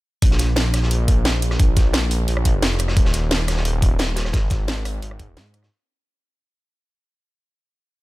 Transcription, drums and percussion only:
0.22 kick loud
0.22 closed hi-hat medium
0.31 snare medium
0.39 snare soft
0.39 closed hi-hat medium
0.39 closed hi-hat loud
0.56 snare loud
0.56 closed hi-hat medium
0.74 cross-stick soft
0.74 snare soft
0.74 closed hi-hat loud
0.74 closed hi-hat medium
0.83 snare soft
0.91 closed hi-hat medium
1.08 kick loud
1.08 closed hi-hat loud
1.08 closed hi-hat medium
1.25 snare loud
1.25 closed hi-hat medium
1.42 closed hi-hat medium
1.42 closed hi-hat loud
1.51 cross-stick soft
1.51 snare soft
1.59 kick loud
1.59 closed hi-hat medium
1.76 kick loud
1.76 snare soft
1.76 closed hi-hat medium
1.93 snare loud
1.93 closed hi-hat medium
2.11 closed hi-hat medium
2.11 open hi-hat medium
2.28 closed hi-hat medium
2.37 cross-stick medium
2.45 kick medium
2.45 closed hi-hat loud
2.45 closed hi-hat medium
2.62 snare loud
2.62 closed hi-hat medium
2.62 closed hi-hat loud
2.71 closed hi-hat soft
2.79 cross-stick soft
2.79 closed hi-hat medium
2.88 cross-stick soft
2.88 snare medium
2.97 kick loud
2.97 closed hi-hat medium
3.05 snare medium
3.14 snare soft
3.14 closed hi-hat medium
3.31 snare loud
3.31 closed hi-hat medium
3.48 cross-stick medium
3.48 snare medium
3.48 closed hi-hat medium
3.57 snare soft
3.65 closed hi-hat medium
3.82 kick loud
3.82 closed hi-hat medium
3.99 snare loud
3.99 closed hi-hat medium
4.16 snare loud
4.16 closed hi-hat medium
4.25 cross-stick soft
4.25 snare soft
4.33 kick loud
4.33 snare loud
4.33 closed hi-hat medium
4.50 kick loud
4.50 snare medium
4.50 closed hi-hat medium
4.68 snare loud
4.68 closed hi-hat medium
4.85 cross-stick soft
4.85 closed hi-hat medium
4.85 open hi-hat medium
5.02 closed hi-hat medium
5.11 cross-stick medium
5.19 kick medium
5.19 closed hi-hat medium
5.37 snare loud
5.37 closed hi-hat medium
5.46 closed hi-hat soft
5.54 cross-stick soft
5.54 closed hi-hat medium
5.63 cross-stick soft
5.63 snare medium

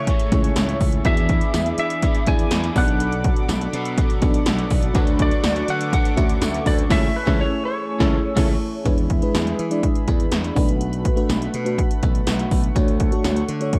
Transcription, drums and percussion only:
0.07 kick medium
0.07 closed hi-hat medium
0.20 closed hi-hat medium
0.32 kick loud
0.32 closed hi-hat medium
0.44 closed hi-hat medium
0.56 snare loud
0.56 closed hi-hat loud
0.56 tambourine medium
0.69 closed hi-hat medium
0.81 kick medium
0.81 open hi-hat medium
0.92 closed hi-hat medium
1.05 kick loud
1.05 closed hi-hat medium
1.17 closed hi-hat medium
1.29 kick medium
1.29 closed hi-hat medium
1.41 closed hi-hat soft
1.54 snare loud
1.54 closed hi-hat medium
1.54 tambourine medium
1.66 closed hi-hat medium
1.78 closed hi-hat medium
1.90 closed hi-hat medium
2.02 kick loud
2.02 closed hi-hat medium
2.15 closed hi-hat medium
2.27 kick loud
2.27 closed hi-hat medium
2.39 closed hi-hat medium
2.51 snare loud
2.51 closed hi-hat loud
2.51 tambourine medium
2.64 closed hi-hat medium
2.76 kick loud
2.76 open hi-hat medium
2.88 closed hi-hat medium
3.00 closed hi-hat medium
3.12 closed hi-hat medium
3.24 kick medium
3.24 closed hi-hat medium
3.36 closed hi-hat medium
3.49 snare loud
3.49 closed hi-hat medium
3.49 tambourine medium
3.61 closed hi-hat medium
3.73 closed hi-hat medium
3.85 closed hi-hat medium
3.98 kick loud
3.98 closed hi-hat loud
4.10 closed hi-hat medium
4.22 kick loud
4.22 closed hi-hat medium
4.34 closed hi-hat medium
4.46 snare loud
4.46 closed hi-hat loud
4.46 tambourine medium
4.59 closed hi-hat medium
4.70 kick medium
4.70 open hi-hat medium
4.83 closed hi-hat medium
4.95 kick loud
4.95 closed hi-hat medium
5.07 closed hi-hat medium
5.19 kick medium
5.19 closed hi-hat medium
5.31 closed hi-hat medium
5.44 snare loud
5.44 closed hi-hat medium
5.44 tambourine medium
5.56 closed hi-hat medium
5.68 closed hi-hat medium
5.81 closed hi-hat medium
5.93 kick loud
5.93 closed hi-hat loud
6.05 closed hi-hat medium
6.17 kick loud
6.17 closed hi-hat medium
6.29 closed hi-hat medium
6.42 snare loud
6.42 closed hi-hat loud
6.42 tambourine medium
6.54 closed hi-hat medium
6.66 kick medium
6.66 open hi-hat medium
6.79 closed hi-hat medium
6.90 kick loud
6.90 snare loud
6.90 crash medium
7.27 kick loud
7.27 snare loud
8.00 kick loud
8.00 snare loud
8.37 kick loud
8.37 snare loud
8.37 crash medium
8.86 kick loud
8.86 closed hi-hat medium
8.98 closed hi-hat medium
9.10 kick medium
9.10 closed hi-hat medium
9.22 closed hi-hat soft
9.35 snare loud
9.35 closed hi-hat medium
9.35 tambourine medium
9.47 closed hi-hat medium
9.59 closed hi-hat medium
9.71 closed hi-hat medium
9.83 kick medium
9.83 closed hi-hat medium
9.95 closed hi-hat medium
10.08 kick medium
10.08 closed hi-hat medium
10.20 closed hi-hat medium
10.32 snare loud
10.32 closed hi-hat loud
10.32 tambourine medium
10.44 closed hi-hat medium
10.56 kick loud
10.56 open hi-hat medium
10.69 closed hi-hat medium
10.81 closed hi-hat medium
10.93 closed hi-hat soft
11.05 kick medium
11.05 closed hi-hat medium
11.17 closed hi-hat soft
11.30 snare loud
11.30 closed hi-hat medium
11.30 tambourine medium
11.42 closed hi-hat medium
11.54 closed hi-hat medium
11.66 closed hi-hat medium
11.78 kick medium
11.78 closed hi-hat medium
11.91 closed hi-hat medium
12.03 kick loud
12.03 closed hi-hat medium
12.15 closed hi-hat medium
12.27 snare loud
12.27 closed hi-hat loud
12.27 tambourine medium
12.39 closed hi-hat medium
12.51 kick medium
12.51 open hi-hat medium
12.64 closed hi-hat medium
12.76 kick loud
12.76 closed hi-hat medium
12.88 closed hi-hat medium
13.00 kick medium
13.00 closed hi-hat medium
13.12 closed hi-hat soft
13.24 snare loud
13.24 closed hi-hat medium
13.24 tambourine medium
13.36 closed hi-hat medium
13.49 closed hi-hat medium
13.61 closed hi-hat medium
13.73 kick medium
13.73 closed hi-hat medium

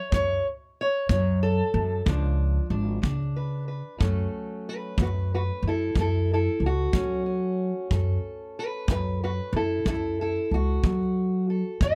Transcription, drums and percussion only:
0.12 kick medium
1.09 kick medium
2.07 kick medium
3.04 kick medium
4.01 kick medium
4.98 kick medium
5.95 kick medium
6.93 kick medium
7.91 kick medium
8.88 kick medium
9.86 kick medium
10.84 kick medium
11.81 kick medium

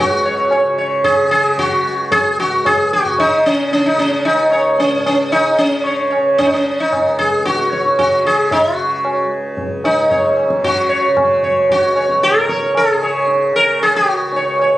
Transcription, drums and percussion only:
0.51 tabla na medium
1.04 tabla tin medium
1.04 tabla ge medium
1.31 tabla na medium
1.58 tabla tin medium
1.58 tabla ge medium
2.11 tabla tin medium
2.11 tabla ge medium
2.65 tabla na medium
2.65 tabla ge medium
2.92 tabla te medium
3.05 tabla ge soft
3.18 tabla tin medium
3.18 tabla ge medium
3.45 tabla na soft
3.72 tabla te medium
3.86 tabla te soft
3.98 tabla ke medium
4.12 tabla te medium
4.25 tabla na medium
4.52 tabla na medium
4.79 tabla tin medium
5.06 tabla na medium
5.33 tabla na medium
5.86 tabla tin medium
6.12 tabla na soft
6.40 tabla na medium
6.40 tabla ge medium
6.93 tabla na medium
6.93 tabla ge medium
7.19 tabla ge soft
7.46 tabla te medium
7.59 tabla te medium
7.73 tabla ke medium
7.86 tabla te medium
7.99 tabla na medium
7.99 tabla ge medium
8.25 tabla te medium
8.51 tabla tin medium
8.51 tabla ge medium
9.05 tabla na medium
9.57 tabla tin medium
9.57 tabla ge medium
9.84 tabla na soft
10.11 tabla tin medium
10.11 tabla ge medium
10.37 tabla na medium
10.50 tabla ke medium
10.64 tabla tin medium
10.64 tabla ge medium
11.17 tabla na medium
11.17 tabla ge medium
11.43 tabla ge soft
11.69 tabla tin medium
11.69 tabla ge medium
11.96 tabla na soft
12.09 tabla ke medium
12.23 tabla te medium
12.36 tabla te soft
12.49 tabla ke soft
12.62 tabla te medium
12.75 tabla na medium
13.01 tabla na medium
13.28 tabla tin medium
13.53 tabla na medium
13.79 tabla na medium
14.32 tabla tin medium
14.59 tabla na medium

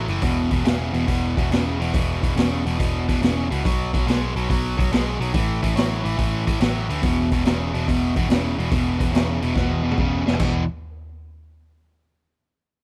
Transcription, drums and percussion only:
0.08 open hi-hat medium
0.22 kick loud
0.22 open hi-hat medium
0.51 kick medium
0.51 open hi-hat medium
0.65 snare loud
0.65 open hi-hat medium
0.94 open hi-hat medium
1.08 kick medium
1.08 open hi-hat medium
1.37 kick medium
1.37 open hi-hat medium
1.52 snare loud
1.52 open hi-hat medium
1.82 open hi-hat medium
1.94 kick loud
1.94 open hi-hat medium
2.23 kick medium
2.23 open hi-hat medium
2.37 snare loud
2.37 open hi-hat medium
2.67 open hi-hat medium
2.80 kick medium
2.80 open hi-hat medium
3.09 kick medium
3.09 open hi-hat medium
3.23 snare loud
3.23 open hi-hat medium
3.52 open hi-hat medium
3.65 kick loud
3.65 open hi-hat medium
3.94 kick medium
3.94 open hi-hat soft
4.08 snare loud
4.08 open hi-hat medium
4.37 open hi-hat medium
4.50 kick medium
4.50 open hi-hat medium
4.79 kick medium
4.79 open hi-hat medium
4.93 snare loud
4.93 open hi-hat medium
5.22 open hi-hat medium
5.34 kick loud
5.34 open hi-hat medium
5.63 kick medium
5.63 open hi-hat medium
5.77 snare loud
5.77 open hi-hat medium
6.05 open hi-hat medium
6.19 kick medium
6.19 open hi-hat medium
6.47 kick medium
6.47 open hi-hat medium
6.61 snare loud
6.61 open hi-hat medium
6.90 open hi-hat medium
7.03 kick loud
7.03 open hi-hat medium
7.31 kick medium
7.31 open hi-hat medium
7.45 snare loud
7.45 open hi-hat medium
7.75 open hi-hat medium
7.88 kick medium
7.88 open hi-hat medium
8.16 kick medium
8.16 open hi-hat medium
8.30 snare loud
8.30 open hi-hat medium
8.60 open hi-hat medium
8.72 kick loud
8.72 open hi-hat medium
9.00 kick medium
9.00 open hi-hat medium
9.15 snare loud
9.15 open hi-hat medium
9.42 open hi-hat medium
9.55 kick medium
9.55 snare medium
9.70 high tom medium
9.91 mid tom medium
9.98 kick medium
10.28 snare medium
10.33 floor tom medium
10.40 kick loud
10.40 floor tom medium
10.40 crash medium

